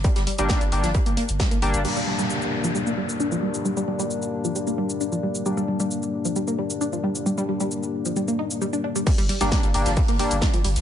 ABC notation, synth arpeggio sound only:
X:1
M:4/4
L:1/16
Q:1/4=133
K:Gm
V:1 name="Synth arpeggio sound" clef=bass
G, G, G, G, z3 F, G, B, B, z G, B, G z | G, G, G, G, z3 F, G, B, G, z D F, G, z | G, G, G, G, z3 F, G, B, G, z D F, G, z | G, G, G, G, z3 F, G, B, G, z D F, G, z |
G, G, G, G, z3 F, G, B, E z G, D D G, | G, G, G, G, z3 F, G, B, G, z D F, G, z |]